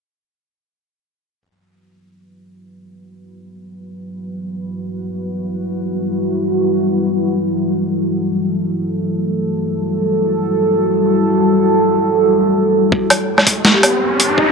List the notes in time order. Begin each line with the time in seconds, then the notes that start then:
1.29 G3 E4 F#4 B4
7.10 A4
12.92 G3 E4 F#4 B4, kick, riser
13.10 closed hi-hat, low woodblock
13.38 snare, low woodblock
13.47 kick, closed hi-hat
13.65 snare
13.74 G4
13.83 closed hi-hat, low woodblock
14.20 closed hi-hat
14.38 kick